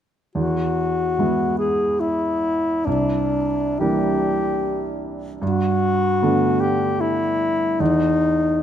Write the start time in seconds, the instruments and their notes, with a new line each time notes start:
0.35 grand piano E2, alto saxophone F#4
1.19 grand piano E3 G#3 B3 E4
1.59 alto saxophone G#4
2.00 alto saxophone E4
2.86 grand piano C2, alto saxophone D4
3.79 grand piano E3 G3 A#3 D4, alto saxophone G4
5.41 grand piano G2, alto saxophone F#4
6.22 grand piano D3 A3 B3 D4
6.61 alto saxophone G4
7.01 alto saxophone E4
7.80 grand piano E2, alto saxophone D#4